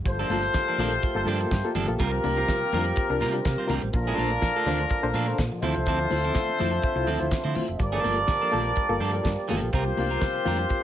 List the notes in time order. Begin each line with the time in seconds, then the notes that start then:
0.04 G1 G2 D3 F3 A3 A#3 F4 G4 A4 C5, muted clean electric guitar stroke, kick, closed hi-hat
0.18 F3 A#3 D4 F4 A4
0.29 G1 F3 A#3 D4 F4 A4, open hi-hat, high conga
0.43 muted clean electric guitar stroke, closed hi-hat
0.54 G2 D3, muted clean electric guitar stroke, kick, snare, closed hi-hat
0.68 F3 A#3 D4 A4
0.78 A#1 F3 A#3 D4 F4 A4, open hi-hat, muted conga, high conga, low conga
0.91 F4 A4, muted clean electric guitar stroke, closed hi-hat
1.03 kick, closed hi-hat, muted conga
1.14 G1 A#3 F4 A4, muted clean electric guitar stroke
1.25 G2 D3 F3 A#3 D4 A4, open hi-hat, muted conga, high conga
1.40 A#3 F4 A4, muted clean electric guitar stroke, closed hi-hat
1.51 G2, muted clean electric guitar stroke, kick, snare, closed hi-hat, muted conga
1.64 A#3 F4 A4, muted clean electric guitar stroke
1.75 G1 G2 D3 F3 A#3 D4 A4, open hi-hat, muted conga, high conga, low conga
1.88 A#1 A#3 F4 A4, muted clean electric guitar stroke, closed hi-hat
1.99 C2 C3 G3 C4 F4 G4 A#4, kick, closed hi-hat, muted conga
2.12 F4 A#4, muted clean electric guitar stroke
2.24 C2 D4 F4 A#4, muted clean electric guitar stroke, open hi-hat, muted conga, high conga
2.37 G3 C4 F4 A#4, closed hi-hat
2.48 C3 G3, kick, snare, closed hi-hat
2.61 muted clean electric guitar stroke
2.72 F2 G3 C4 D4 F4 A#4, open hi-hat, high conga, low conga
2.85 muted clean electric guitar stroke, closed hi-hat
2.96 kick, closed hi-hat, muted conga
3.10 C2 D4 F4 A#4, muted clean electric guitar stroke
3.20 C3 G3 C4 F4 A#4, open hi-hat, high conga
3.34 D4 F4 A#4, muted clean electric guitar stroke, closed hi-hat
3.44 C3 F4 A#4, muted clean electric guitar stroke, kick, snare, closed hi-hat, muted conga
3.56 C3 G3 C4 F4 C5
3.67 C2 G3 C4 D4 F4 A#4, open hi-hat, muted conga, high conga, low conga
3.82 A1, muted clean electric guitar stroke, closed hi-hat
3.92 A#1 A#2 D3 F3 D4 F4 A#4, muted clean electric guitar stroke, kick, closed hi-hat, muted conga
4.05 A3 D4 F4 A4 C5
4.16 A#1 A3 D4 F4 A4 C5, open hi-hat, high conga
4.31 muted clean electric guitar stroke, closed hi-hat
4.41 A#2 F3, muted clean electric guitar stroke, kick, snare, closed hi-hat
4.56 A3 D4 F4 A4
4.66 D2 A3 D4 F4 A4 C5, open hi-hat, high conga, low conga
4.79 A4 C5, muted clean electric guitar stroke, closed hi-hat
4.89 kick, closed hi-hat, muted conga
5.03 A#1 D4 A4 C5, muted clean electric guitar stroke
5.14 A#2 F3 A3 D4 F4 A4, open hi-hat, muted conga, high conga
5.28 D4 A4 C5, muted clean electric guitar stroke, closed hi-hat
5.38 A#2 A4 C5, muted clean electric guitar stroke, kick, snare, closed hi-hat
5.51 A#2 F3, muted clean electric guitar stroke
5.62 D2 F3 C4 E4 F4 A4 C5 E5, open hi-hat, high conga, low conga
5.74 C2, muted clean electric guitar stroke, closed hi-hat
5.86 D2 D3 F3 A3 C4 E4 A4, kick, closed hi-hat
6.00 F4 C5, muted clean electric guitar stroke
6.10 D2 E4 F4 C5, muted clean electric guitar stroke, open hi-hat, high conga
6.23 F3 C4 E4 A4, closed hi-hat
6.35 D3 A3, kick, snare, closed hi-hat, muted conga
6.49 muted clean electric guitar stroke
6.58 F2 F3 C4 E4 F4 A4 C5, open hi-hat, muted conga, high conga, low conga
6.72 F4 C5, muted clean electric guitar stroke, closed hi-hat
6.82 kick, closed hi-hat
6.95 C2 E4 F4 C5, muted clean electric guitar stroke
7.07 D2 D3 F3 A3 C4 E4 A4, open hi-hat, high conga
7.19 D2 E4 F4 C5, muted clean electric guitar stroke, closed hi-hat
7.31 muted clean electric guitar stroke, kick, snare, closed hi-hat
7.44 D3 F3 A3 C4 E4 C5
7.55 E4 F4 C5, open hi-hat, high conga, low conga
7.68 F1, muted clean electric guitar stroke, closed hi-hat
7.79 G1 G2 D3 G3 A#3 D4 G4 A#4 D5, muted clean electric guitar stroke, kick, closed hi-hat, muted conga
7.92 F3 A#3 D4 F4 A4
8.04 G1 F3 A#3 D4 F4 A4, open hi-hat, high conga
8.16 muted clean electric guitar stroke, closed hi-hat
8.27 G2 D3, muted clean electric guitar stroke, kick, snare, closed hi-hat, muted conga
8.41 F3 A#3 D4 A4
8.51 A#1 F3 A#3 D4 F4 A4, open hi-hat, high conga, low conga
8.65 F4 A4, muted clean electric guitar stroke, closed hi-hat
8.76 kick, closed hi-hat
8.89 G1 A#3 F4 A4, muted clean electric guitar stroke
9.00 G2 D3 F3 A#3 D4 A4, open hi-hat, high conga
9.12 A#3 F4 A4, muted clean electric guitar stroke, closed hi-hat
9.24 G2 D3, muted clean electric guitar stroke, kick, snare, closed hi-hat, muted conga
9.36 muted clean electric guitar stroke
9.48 G1 F3 A#3 D4 F4 A4, open hi-hat, high conga, low conga
9.61 A#1 F4 A4, muted clean electric guitar stroke, closed hi-hat
9.73 C2 C3 G3 C4 F4 G4 A#4 C5, kick, closed hi-hat
9.85 D4 F4, muted clean electric guitar stroke
9.97 C2 A#3 D4 F4, muted clean electric guitar stroke, open hi-hat, high conga
10.10 G3 C4 F4 A#4, closed hi-hat
10.21 C3 G3, kick, snare, closed hi-hat, muted conga
10.35 muted clean electric guitar stroke
10.45 F2 G3 A#3 C4 D4 F4 A#4, open hi-hat, high conga, low conga
10.58 D4 F4, muted clean electric guitar stroke, closed hi-hat
10.69 kick, closed hi-hat, muted conga